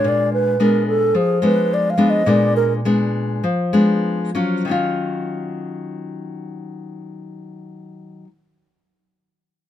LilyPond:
<<
  \new Staff \with { instrumentName = "Alto flute" } { \time 4/4 \key ees \minor \tempo 4 = 94 d''8 ces''8 bes'8 a'8 aes'8 ces''8 \tuplet 3/2 { d''8 f''8 ees''8 } | d''8 bes'8 r2. | r1 | r1 | }
  \new Staff \with { instrumentName = "Nylon-string guitar" } { \time 4/4 \key ees \minor << { <aes d'>4 <aes ces' d'>4 r8 <aes ces' d'>4 <aes ces' d'>8 | <aes ces' d'>4 <aes ces' d'>4 r8 <aes ces' d'>4 <ges des' f'>8~ | <ges des' f'>4 r2. | r1 | } \\ { bes,2 f2 | bes,2 f2 | <ees ges des' f'>1~ | <ees ges des' f'>1 | } >> }
>>